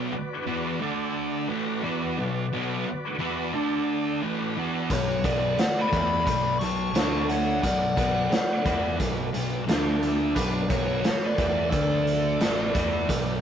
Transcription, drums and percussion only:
4.90 kick, closed hi-hat
5.24 kick, closed hi-hat
5.59 snare, closed hi-hat
5.93 kick, closed hi-hat
6.27 kick, closed hi-hat
6.61 closed hi-hat
6.95 snare, closed hi-hat
7.29 closed hi-hat
7.63 kick, closed hi-hat
7.97 kick, closed hi-hat
8.32 snare, closed hi-hat
8.65 kick, closed hi-hat
9.00 kick, closed hi-hat
9.34 closed hi-hat
9.68 snare, closed hi-hat
10.03 closed hi-hat
10.36 kick, closed hi-hat
10.70 kick, closed hi-hat
11.04 snare, closed hi-hat
11.38 kick, closed hi-hat
11.72 kick, closed hi-hat
12.07 closed hi-hat
12.40 snare, closed hi-hat
12.75 kick, closed hi-hat
13.09 kick, closed hi-hat

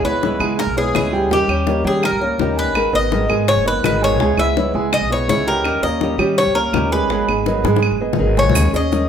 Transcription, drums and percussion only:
0.05 high bongo
0.23 high bongo
0.40 high bongo, claves
0.59 high bongo
0.77 high bongo
0.95 high bongo, low bongo, claves
1.31 high bongo
1.49 high bongo, claves
1.67 high bongo
2.03 high bongo, claves
2.21 high bongo
2.39 high bongo, low bongo
2.58 high bongo
2.75 high bongo, claves
2.94 high bongo
3.12 high bongo
3.30 high bongo, claves
3.48 high bongo
3.66 high bongo
3.84 high bongo, low bongo, claves
4.20 high bongo
4.38 high bongo, claves
4.57 high bongo
4.93 high bongo, claves
5.11 high bongo
5.29 high bongo, low bongo
5.48 high bongo
5.64 high bongo, claves
5.83 high bongo
6.01 high bongo
6.19 high bongo, claves
6.38 high bongo
6.56 high bongo
6.73 high bongo, low bongo, claves
7.10 high bongo
7.29 high bongo, claves
7.46 high bongo
7.65 high bongo
7.76 high bongo
7.83 claves
8.13 low bongo
8.37 low bongo
8.49 low bongo
8.55 high bongo, claves, maracas
8.74 high bongo, maracas
8.92 high bongo, maracas

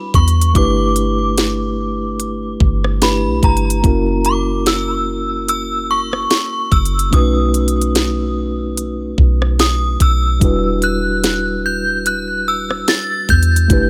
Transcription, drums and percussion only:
0.14 kick, closed hi-hat
0.28 closed hi-hat
0.41 closed hi-hat
0.55 kick, closed hi-hat
0.96 closed hi-hat
1.38 snare, closed hi-hat
2.20 closed hi-hat
2.60 kick
2.84 cross-stick
3.02 snare, closed hi-hat
3.43 kick, closed hi-hat
3.57 closed hi-hat
3.70 closed hi-hat
3.84 kick, closed hi-hat
4.25 closed hi-hat
4.66 snare, closed hi-hat
5.48 closed hi-hat
6.13 cross-stick
6.31 snare, closed hi-hat
6.72 kick, closed hi-hat
6.85 closed hi-hat
6.99 closed hi-hat
7.13 kick, closed hi-hat
7.54 closed hi-hat
7.68 closed hi-hat
7.81 closed hi-hat
7.95 snare, closed hi-hat
8.77 closed hi-hat
9.18 kick
9.42 cross-stick
9.59 snare, closed hi-hat
10.00 kick, closed hi-hat
10.41 kick, closed hi-hat
10.82 closed hi-hat
11.24 snare, closed hi-hat
12.06 closed hi-hat
12.71 cross-stick
12.88 snare, closed hi-hat
13.29 kick, closed hi-hat
13.43 closed hi-hat
13.56 closed hi-hat
13.70 kick, closed hi-hat

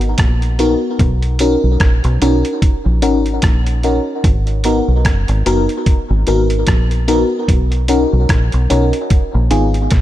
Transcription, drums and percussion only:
0.01 closed hi-hat
0.18 kick, cross-stick, closed hi-hat
0.42 closed hi-hat
0.59 closed hi-hat
0.99 kick, closed hi-hat
1.22 closed hi-hat
1.39 closed hi-hat
1.80 kick, cross-stick, closed hi-hat
2.04 closed hi-hat
2.22 closed hi-hat
2.45 closed hi-hat
2.62 kick, closed hi-hat
3.02 closed hi-hat
3.26 closed hi-hat
3.42 kick, cross-stick, closed hi-hat
3.67 closed hi-hat
3.83 closed hi-hat
4.24 kick, closed hi-hat
4.47 closed hi-hat
4.64 closed hi-hat
5.05 kick, cross-stick, closed hi-hat
5.28 closed hi-hat
5.46 closed hi-hat
5.69 closed hi-hat
5.86 kick, closed hi-hat
6.27 closed hi-hat
6.50 closed hi-hat
6.67 kick, cross-stick, closed hi-hat
6.91 closed hi-hat
7.08 closed hi-hat
7.48 kick, closed hi-hat
7.72 closed hi-hat
7.88 closed hi-hat
8.29 kick, cross-stick, closed hi-hat
8.52 closed hi-hat
8.70 closed hi-hat
8.93 closed hi-hat
9.10 kick, closed hi-hat
9.51 closed hi-hat
9.74 closed hi-hat
9.91 kick, snare, closed hi-hat

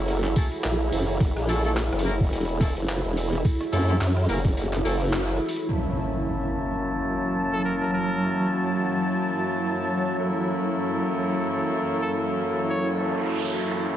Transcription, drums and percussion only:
0.08 open hi-hat
0.24 clap, open hi-hat
0.36 kick, open hi-hat
0.52 open hi-hat
0.64 clap, open hi-hat
0.80 open hi-hat
0.92 open hi-hat
1.08 open hi-hat
1.20 kick, open hi-hat
1.37 cross-stick
1.49 open hi-hat
1.64 open hi-hat
1.77 clap, open hi-hat
1.93 cross-stick, open hi-hat
1.99 open hi-hat
2.20 kick, open hi-hat
2.24 open hi-hat
2.27 open hi-hat
2.30 open hi-hat
2.33 open hi-hat
2.37 open hi-hat
2.41 open hi-hat
2.45 open hi-hat
2.49 open hi-hat
2.61 kick, open hi-hat
2.77 open hi-hat
2.89 clap, open hi-hat
3.05 open hi-hat
3.17 open hi-hat
3.33 open hi-hat
3.45 kick, open hi-hat
3.61 cross-stick, open hi-hat
3.73 open hi-hat
3.89 open hi-hat
4.01 clap, open hi-hat
4.17 cross-stick, open hi-hat
4.29 open hi-hat
4.45 kick, open hi-hat
4.57 open hi-hat
4.65 open hi-hat
4.73 clap
4.85 open hi-hat
5.01 open hi-hat
5.04 open hi-hat
5.09 open hi-hat
5.13 clap, open hi-hat
5.19 open hi-hat
5.23 open hi-hat
5.29 open hi-hat
5.37 open hi-hat
5.46 open hi-hat
5.49 open hi-hat
5.56 open hi-hat

